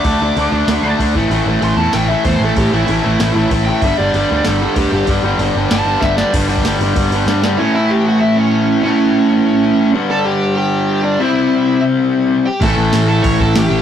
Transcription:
<<
  \new Staff \with { instrumentName = "Lead electric guitar" } { \time 4/4 \key a \mixolydian \tempo 4 = 191 d'''2. r4 | r4 c'''8 a''8 g''8 e''8 c''8 a'8 | g'8 e'8 e'2 r8 g''8 | e''8 d''4. a'4 g'8 g'8 |
r2 a''4 e''8 d''8 | r1 | <cis' cis''>8 <e' e''>8 <g' g''>8 <fis' fis''>8 <e' e''>8 <cis' cis''>4. | <cis' cis''>2.~ <cis' cis''>8 r8 |
<a' a''>8 <g' g''>4 <g' g''>4. <d' d''>8 <e' e''>8~ | <e' e''>4. r2 <g' g''>8 | <a' a''>4. <a' a''>8 <cis'' cis'''>8 <a' a''>8 <g' g''>4 | }
  \new Staff \with { instrumentName = "Distorted electric guitar" } { \time 4/4 \key a \mixolydian r1 | <a, e a cis' e'>2 <a, e a cis' e'>2 | <a, e a cis' e'>2 <a, e a cis' e'>2 | <g, d g b d'>2 <g, d g b d'>2 |
<d g b d'>2 <g, d g b d'>2 | <g, d g b d'>2.~ <g, d g b d'>8 <g, d g b d'>8 | r1 | r1 |
r1 | r1 | <a, e a cis' e'>2~ <a, e a cis' e'>8 <a, e a cis' e'>8 <a, e a cis' e'>4 | }
  \new Staff \with { instrumentName = "Distorted electric guitar" } { \clef bass \time 4/4 \key a \mixolydian <d a d'>8 <d a d'>8 <d a d'>8 <d a d'>8 <d a d'>8 <d a d'>8 <d a d'>8 <a, e a>8 | <a, e a>8 <a, e a>8 <a, e a>8 <a, e a>8 <a, e a>8 <a, e a>8 <a, e a>8 <a, e a>8 | <a, e a>8 <a, e a>8 <a, e a>8 <a, e a>8 <a, e a>8 <a, e a>8 <a, e a>8 <a, e a>8 | <g, d g>8 <g, d g>8 <g, d g>8 <g, d g>8 <g, d g>8 <g, d g>8 <g, d g>8 <g, d g>8 |
<g, d g>8 <g, d g>8 <g, d g>8 <g, d g>8 <g, d g>8 <g, d g>8 <g, d g>8 <g, d g>8 | <g, d g>8 <g, d g>8 <g, d g>8 <g, d g>8 <g, d g>8 <g, d g>8 <g, d g>8 <g, d g>8 | <a, e a>1 | <a, e a>2.~ <a, e a>8 <g, d g>8~ |
<g, d g>2.~ <g, d g>8 <c g c'>8~ | <c g c'>2.~ <c g c'>8 r8 | <a, e a>1 | }
  \new Staff \with { instrumentName = "Distorted electric guitar" } { \clef bass \time 4/4 \key a \mixolydian <d a d'>8 <d a d'>8 <d a d'>8 <d a d'>8 <d a d'>8 <d a d'>8 <d a d'>8 <a, e a>8 | <a, e a>8 <a, e a>8 <a, e a>8 <a, e a>8 <a, e a>8 <a, e a>8 <a, e a>8 <a, e a>8 | <a, e a>8 <a, e a>8 <a, e a>8 <a, e a>8 <a, e a>8 <a, e a>8 <a, e a>8 <a, e a>8 | <g, d g>8 <g, d g>8 <g, d g>8 <g, d g>8 <g, d g>8 <g, d g>8 <g, d g>8 <g, d g>8 |
<g, d g>8 <g, d g>8 <g, d g>8 <g, d g>8 <g, d g>8 <g, d g>8 <g, d g>8 <g, d g>8 | <g, d g>8 <g, d g>8 <g, d g>8 <g, d g>8 <g, d g>8 <g, d g>8 <g, d g>8 <g, d g>8 | r1 | r1 |
r1 | r1 | <a, e a>2.~ <a, e a>8 <a, e a>8 | }
  \new Staff \with { instrumentName = "Picked electric bass" } { \clef bass \time 4/4 \key a \mixolydian d,8 d,8 d,8 d,8 d,8 d,8 d,8 a,,8 | a,,8 a,,8 a,,8 e,8 a,,4 e,8 a,,8 | a,,8 a,,8 a,,8 a,,8 a,,8 a,,8 a,,4 | g,,8 g,,8 g,,8 d,8 g,,4 d,8 g,,8 |
g,,8 g,,8 g,,8 g,,8 g,,8 g,,8 g,,4 | g,,4 g,,8 g,,8 g,,8 g,,8 g,4 | r1 | r1 |
r1 | r1 | a,,8 a,,8 a,,4 a,,8 a,,8 a,,8 a,,8 | }
  \new DrumStaff \with { instrumentName = "Drums" } \drummode { \time 4/4 <cymc bd>4 cymc4 <cymc sn>4 <cymc bd>8 bd8 | cymc4 cymc4 <cymc sn>4 <cymc bd>4 | <cymc bd>4 cymc4 <cymc sn>4 <cymc bd>4 | <cymc bd>4 cymc4 <cymc sn>4 <cymc bd>4 |
<cymc bd>4 cymc4 <cymc sn>4 <bd sn>8 sn8 | <cymc bd>8 cymc16 bd16 <cymc sn>8 cymc8 <cymc bd>8 cymc8 sn8 sn8 | r4 r4 r4 r4 | r4 r4 r4 r4 |
r4 r4 r4 r4 | r4 r4 r4 r4 | <cymc bd>4 <cymc sn>4 <cymc bd>8 bd8 <cymc sn>4 | }
>>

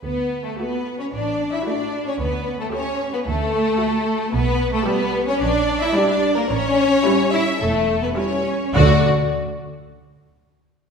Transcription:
<<
  \new Staff \with { instrumentName = "Violin section" } { \time 4/4 \key d \major \tempo 4 = 110 b'8. a'16 b'8. cis''16 d''8. e''16 d''8. cis''16 | b'8. a'16 cis''8. b'16 a'2 | b'8. a'16 b'8. cis''16 d''8. e''16 d''8. bes'16 | cis''4. e''8 a'8. b'16 cis''4 |
d''8 r2. r8 | }
  \new Staff \with { instrumentName = "Violin section" } { \time 4/4 \key d \major b8. a16 b8. cis'16 d'8. e'16 d'8. cis'16 | b8. a16 cis'8. b16 a2 | b8. a16 b8. cis'16 d'8. e'16 d'8. bes16 | cis'4. e'8 a8. b16 cis'4 |
fis'8 r2. r8 | }
  \new Staff \with { instrumentName = "Viola section" } { \time 4/4 \key d \major r4 <a fis'>4 r4 <a fis'>4 | r4 <a g'>4 r4 <a fis'>4 | r4 <g g'>4 r4 <g g'>4 | r4 <g e'>4 r4 <g e'>4 |
<a fis'>8 r2. r8 | }
  \new Staff \with { instrumentName = "Cello section" } { \time 4/4 \key d \major b8. a16 b8. cis'16 d'8. e'16 d'8. cis'16 | b8. a16 cis'8. b16 a2 | b8. a16 b8. cis'16 d'8. e'16 d'8. bes16 | cis'4. e'8 a8. b16 cis'4 |
d8 r2. r8 | }
  \new Staff \with { instrumentName = "Double bass section" } { \clef bass \time 4/4 \key d \major d,4 r4 a,,4 r4 | d,4 r4 d,4 r4 | b,,4 r4 bes,,4 r4 | a,,4 r4 e,,4 r4 |
d,8 r2. r8 | }
>>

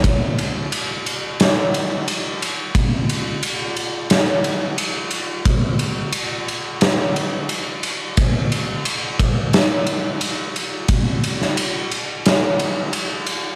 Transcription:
\new DrumStaff \with { instrumentName = "Drums" } \drummode { \time 4/4 \tempo 4 = 88 <bd cymr>8 cymr8 cymr8 cymr8 <cymr sn>8 cymr8 cymr8 cymr8 | <bd cymr>8 cymr8 cymr8 cymr8 <cymr sn>8 cymr8 cymr8 cymr8 | <bd cymr>8 cymr8 cymr8 cymr8 <cymr sn>8 cymr8 cymr8 cymr8 | <bd cymr>8 cymr8 cymr8 <bd cymr>8 <cymr sn>8 cymr8 cymr8 cymr8 |
<bd cymr>8 cymr16 sn16 cymr8 cymr8 <cymr sn>8 cymr8 cymr8 cymr8 | }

